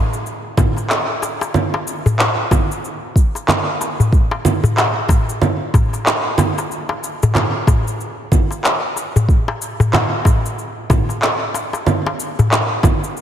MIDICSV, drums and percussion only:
0, 0, Header, 1, 3, 480
1, 0, Start_track
1, 0, Tempo, 645161
1, 1149, Time_signature, 4, 2, 24, 8
1, 9829, End_track
2, 0, Start_track
2, 0, Title_t, "Darbuka"
2, 430, Note_on_c, 9, 63, 76
2, 434, Note_on_c, 9, 64, 81
2, 504, Note_off_c, 9, 63, 0
2, 508, Note_off_c, 9, 64, 0
2, 570, Note_on_c, 9, 62, 57
2, 644, Note_off_c, 9, 62, 0
2, 909, Note_on_c, 9, 62, 56
2, 911, Note_on_c, 9, 63, 60
2, 984, Note_off_c, 9, 62, 0
2, 986, Note_off_c, 9, 63, 0
2, 1052, Note_on_c, 9, 63, 67
2, 1126, Note_off_c, 9, 63, 0
2, 1294, Note_on_c, 9, 63, 73
2, 1368, Note_off_c, 9, 63, 0
2, 1531, Note_on_c, 9, 64, 92
2, 1606, Note_off_c, 9, 64, 0
2, 1870, Note_on_c, 9, 63, 78
2, 1944, Note_off_c, 9, 63, 0
2, 2494, Note_on_c, 9, 62, 60
2, 2568, Note_off_c, 9, 62, 0
2, 2834, Note_on_c, 9, 62, 57
2, 2909, Note_off_c, 9, 62, 0
2, 2974, Note_on_c, 9, 64, 68
2, 3049, Note_off_c, 9, 64, 0
2, 3210, Note_on_c, 9, 63, 78
2, 3284, Note_off_c, 9, 63, 0
2, 3448, Note_on_c, 9, 64, 90
2, 3523, Note_off_c, 9, 64, 0
2, 3784, Note_on_c, 9, 64, 84
2, 3788, Note_on_c, 9, 63, 73
2, 3859, Note_off_c, 9, 64, 0
2, 3862, Note_off_c, 9, 63, 0
2, 4271, Note_on_c, 9, 63, 74
2, 4274, Note_on_c, 9, 64, 87
2, 4345, Note_off_c, 9, 63, 0
2, 4349, Note_off_c, 9, 64, 0
2, 4413, Note_on_c, 9, 62, 54
2, 4488, Note_off_c, 9, 62, 0
2, 4749, Note_on_c, 9, 62, 46
2, 4753, Note_on_c, 9, 63, 64
2, 4824, Note_off_c, 9, 62, 0
2, 4827, Note_off_c, 9, 63, 0
2, 4897, Note_on_c, 9, 63, 58
2, 4972, Note_off_c, 9, 63, 0
2, 5127, Note_on_c, 9, 63, 70
2, 5202, Note_off_c, 9, 63, 0
2, 5379, Note_on_c, 9, 64, 91
2, 5454, Note_off_c, 9, 64, 0
2, 5710, Note_on_c, 9, 63, 76
2, 5712, Note_on_c, 9, 64, 82
2, 5785, Note_off_c, 9, 63, 0
2, 5786, Note_off_c, 9, 64, 0
2, 6328, Note_on_c, 9, 62, 57
2, 6403, Note_off_c, 9, 62, 0
2, 6667, Note_on_c, 9, 62, 46
2, 6742, Note_off_c, 9, 62, 0
2, 6814, Note_on_c, 9, 64, 80
2, 6889, Note_off_c, 9, 64, 0
2, 7054, Note_on_c, 9, 63, 75
2, 7128, Note_off_c, 9, 63, 0
2, 7290, Note_on_c, 9, 64, 93
2, 7365, Note_off_c, 9, 64, 0
2, 7626, Note_on_c, 9, 63, 76
2, 7635, Note_on_c, 9, 64, 69
2, 7701, Note_off_c, 9, 63, 0
2, 7709, Note_off_c, 9, 64, 0
2, 8110, Note_on_c, 9, 63, 76
2, 8111, Note_on_c, 9, 64, 89
2, 8184, Note_off_c, 9, 63, 0
2, 8185, Note_off_c, 9, 64, 0
2, 8251, Note_on_c, 9, 62, 52
2, 8326, Note_off_c, 9, 62, 0
2, 8589, Note_on_c, 9, 63, 57
2, 8596, Note_on_c, 9, 62, 45
2, 8663, Note_off_c, 9, 63, 0
2, 8670, Note_off_c, 9, 62, 0
2, 8730, Note_on_c, 9, 63, 61
2, 8804, Note_off_c, 9, 63, 0
2, 8976, Note_on_c, 9, 63, 71
2, 9051, Note_off_c, 9, 63, 0
2, 9218, Note_on_c, 9, 64, 83
2, 9293, Note_off_c, 9, 64, 0
2, 9547, Note_on_c, 9, 63, 71
2, 9622, Note_off_c, 9, 63, 0
2, 9829, End_track
3, 0, Start_track
3, 0, Title_t, "Drums"
3, 100, Note_on_c, 9, 82, 39
3, 174, Note_off_c, 9, 82, 0
3, 196, Note_on_c, 9, 82, 30
3, 271, Note_off_c, 9, 82, 0
3, 428, Note_on_c, 9, 36, 94
3, 428, Note_on_c, 9, 64, 78
3, 434, Note_on_c, 9, 82, 70
3, 502, Note_off_c, 9, 64, 0
3, 503, Note_off_c, 9, 36, 0
3, 509, Note_off_c, 9, 82, 0
3, 577, Note_on_c, 9, 82, 41
3, 652, Note_off_c, 9, 82, 0
3, 668, Note_on_c, 9, 39, 102
3, 675, Note_on_c, 9, 82, 31
3, 742, Note_off_c, 9, 39, 0
3, 749, Note_off_c, 9, 82, 0
3, 916, Note_on_c, 9, 82, 72
3, 990, Note_off_c, 9, 82, 0
3, 1058, Note_on_c, 9, 82, 42
3, 1133, Note_off_c, 9, 82, 0
3, 1148, Note_on_c, 9, 64, 76
3, 1155, Note_on_c, 9, 82, 32
3, 1222, Note_off_c, 9, 64, 0
3, 1230, Note_off_c, 9, 82, 0
3, 1394, Note_on_c, 9, 82, 73
3, 1469, Note_off_c, 9, 82, 0
3, 1539, Note_on_c, 9, 82, 40
3, 1613, Note_off_c, 9, 82, 0
3, 1631, Note_on_c, 9, 39, 98
3, 1638, Note_on_c, 9, 82, 33
3, 1705, Note_off_c, 9, 39, 0
3, 1712, Note_off_c, 9, 82, 0
3, 1869, Note_on_c, 9, 36, 102
3, 1871, Note_on_c, 9, 64, 81
3, 1878, Note_on_c, 9, 82, 82
3, 1943, Note_off_c, 9, 36, 0
3, 1945, Note_off_c, 9, 64, 0
3, 1952, Note_off_c, 9, 82, 0
3, 2020, Note_on_c, 9, 82, 43
3, 2095, Note_off_c, 9, 82, 0
3, 2118, Note_on_c, 9, 82, 31
3, 2192, Note_off_c, 9, 82, 0
3, 2349, Note_on_c, 9, 36, 96
3, 2358, Note_on_c, 9, 82, 73
3, 2423, Note_off_c, 9, 36, 0
3, 2432, Note_off_c, 9, 82, 0
3, 2500, Note_on_c, 9, 82, 44
3, 2575, Note_off_c, 9, 82, 0
3, 2592, Note_on_c, 9, 39, 104
3, 2592, Note_on_c, 9, 64, 74
3, 2599, Note_on_c, 9, 82, 34
3, 2666, Note_off_c, 9, 39, 0
3, 2666, Note_off_c, 9, 64, 0
3, 2673, Note_off_c, 9, 82, 0
3, 2837, Note_on_c, 9, 82, 71
3, 2912, Note_off_c, 9, 82, 0
3, 2979, Note_on_c, 9, 82, 42
3, 3054, Note_off_c, 9, 82, 0
3, 3069, Note_on_c, 9, 36, 120
3, 3077, Note_on_c, 9, 82, 31
3, 3144, Note_off_c, 9, 36, 0
3, 3151, Note_off_c, 9, 82, 0
3, 3310, Note_on_c, 9, 64, 72
3, 3317, Note_on_c, 9, 82, 75
3, 3385, Note_off_c, 9, 64, 0
3, 3392, Note_off_c, 9, 82, 0
3, 3459, Note_on_c, 9, 82, 41
3, 3533, Note_off_c, 9, 82, 0
3, 3551, Note_on_c, 9, 39, 93
3, 3558, Note_on_c, 9, 82, 35
3, 3625, Note_off_c, 9, 39, 0
3, 3632, Note_off_c, 9, 82, 0
3, 3790, Note_on_c, 9, 36, 107
3, 3796, Note_on_c, 9, 82, 81
3, 3864, Note_off_c, 9, 36, 0
3, 3870, Note_off_c, 9, 82, 0
3, 3938, Note_on_c, 9, 82, 44
3, 4012, Note_off_c, 9, 82, 0
3, 4029, Note_on_c, 9, 64, 73
3, 4036, Note_on_c, 9, 82, 33
3, 4103, Note_off_c, 9, 64, 0
3, 4111, Note_off_c, 9, 82, 0
3, 4270, Note_on_c, 9, 36, 102
3, 4276, Note_on_c, 9, 82, 72
3, 4344, Note_off_c, 9, 36, 0
3, 4350, Note_off_c, 9, 82, 0
3, 4418, Note_on_c, 9, 82, 43
3, 4492, Note_off_c, 9, 82, 0
3, 4509, Note_on_c, 9, 39, 106
3, 4516, Note_on_c, 9, 82, 33
3, 4583, Note_off_c, 9, 39, 0
3, 4590, Note_off_c, 9, 82, 0
3, 4746, Note_on_c, 9, 64, 74
3, 4753, Note_on_c, 9, 82, 76
3, 4820, Note_off_c, 9, 64, 0
3, 4827, Note_off_c, 9, 82, 0
3, 4897, Note_on_c, 9, 82, 44
3, 4971, Note_off_c, 9, 82, 0
3, 4996, Note_on_c, 9, 82, 31
3, 5070, Note_off_c, 9, 82, 0
3, 5236, Note_on_c, 9, 82, 74
3, 5310, Note_off_c, 9, 82, 0
3, 5377, Note_on_c, 9, 82, 43
3, 5451, Note_off_c, 9, 82, 0
3, 5468, Note_on_c, 9, 39, 91
3, 5468, Note_on_c, 9, 64, 73
3, 5475, Note_on_c, 9, 82, 31
3, 5542, Note_off_c, 9, 39, 0
3, 5542, Note_off_c, 9, 64, 0
3, 5549, Note_off_c, 9, 82, 0
3, 5709, Note_on_c, 9, 36, 107
3, 5714, Note_on_c, 9, 82, 79
3, 5783, Note_off_c, 9, 36, 0
3, 5789, Note_off_c, 9, 82, 0
3, 5859, Note_on_c, 9, 82, 44
3, 5934, Note_off_c, 9, 82, 0
3, 5956, Note_on_c, 9, 82, 31
3, 6031, Note_off_c, 9, 82, 0
3, 6188, Note_on_c, 9, 64, 65
3, 6189, Note_on_c, 9, 36, 105
3, 6195, Note_on_c, 9, 82, 78
3, 6263, Note_off_c, 9, 64, 0
3, 6264, Note_off_c, 9, 36, 0
3, 6270, Note_off_c, 9, 82, 0
3, 6337, Note_on_c, 9, 82, 42
3, 6412, Note_off_c, 9, 82, 0
3, 6429, Note_on_c, 9, 39, 89
3, 6436, Note_on_c, 9, 82, 33
3, 6503, Note_off_c, 9, 39, 0
3, 6511, Note_off_c, 9, 82, 0
3, 6675, Note_on_c, 9, 82, 75
3, 6749, Note_off_c, 9, 82, 0
3, 6819, Note_on_c, 9, 82, 45
3, 6893, Note_off_c, 9, 82, 0
3, 6909, Note_on_c, 9, 36, 108
3, 6916, Note_on_c, 9, 82, 29
3, 6983, Note_off_c, 9, 36, 0
3, 6990, Note_off_c, 9, 82, 0
3, 7156, Note_on_c, 9, 82, 74
3, 7230, Note_off_c, 9, 82, 0
3, 7298, Note_on_c, 9, 82, 41
3, 7372, Note_off_c, 9, 82, 0
3, 7390, Note_on_c, 9, 39, 92
3, 7390, Note_on_c, 9, 64, 73
3, 7397, Note_on_c, 9, 82, 31
3, 7465, Note_off_c, 9, 39, 0
3, 7465, Note_off_c, 9, 64, 0
3, 7472, Note_off_c, 9, 82, 0
3, 7629, Note_on_c, 9, 36, 96
3, 7638, Note_on_c, 9, 82, 76
3, 7703, Note_off_c, 9, 36, 0
3, 7712, Note_off_c, 9, 82, 0
3, 7780, Note_on_c, 9, 82, 44
3, 7855, Note_off_c, 9, 82, 0
3, 7876, Note_on_c, 9, 82, 30
3, 7951, Note_off_c, 9, 82, 0
3, 8108, Note_on_c, 9, 36, 92
3, 8109, Note_on_c, 9, 64, 70
3, 8116, Note_on_c, 9, 82, 69
3, 8183, Note_off_c, 9, 36, 0
3, 8183, Note_off_c, 9, 64, 0
3, 8190, Note_off_c, 9, 82, 0
3, 8259, Note_on_c, 9, 82, 39
3, 8333, Note_off_c, 9, 82, 0
3, 8349, Note_on_c, 9, 39, 96
3, 8356, Note_on_c, 9, 82, 33
3, 8423, Note_off_c, 9, 39, 0
3, 8430, Note_off_c, 9, 82, 0
3, 8596, Note_on_c, 9, 82, 74
3, 8670, Note_off_c, 9, 82, 0
3, 8738, Note_on_c, 9, 82, 42
3, 8812, Note_off_c, 9, 82, 0
3, 8828, Note_on_c, 9, 64, 72
3, 8835, Note_on_c, 9, 82, 29
3, 8902, Note_off_c, 9, 64, 0
3, 8909, Note_off_c, 9, 82, 0
3, 9076, Note_on_c, 9, 82, 71
3, 9150, Note_off_c, 9, 82, 0
3, 9220, Note_on_c, 9, 82, 39
3, 9294, Note_off_c, 9, 82, 0
3, 9311, Note_on_c, 9, 39, 97
3, 9318, Note_on_c, 9, 82, 31
3, 9385, Note_off_c, 9, 39, 0
3, 9392, Note_off_c, 9, 82, 0
3, 9549, Note_on_c, 9, 36, 98
3, 9552, Note_on_c, 9, 64, 79
3, 9559, Note_on_c, 9, 82, 75
3, 9623, Note_off_c, 9, 36, 0
3, 9626, Note_off_c, 9, 64, 0
3, 9633, Note_off_c, 9, 82, 0
3, 9700, Note_on_c, 9, 82, 42
3, 9774, Note_off_c, 9, 82, 0
3, 9798, Note_on_c, 9, 82, 32
3, 9829, Note_off_c, 9, 82, 0
3, 9829, End_track
0, 0, End_of_file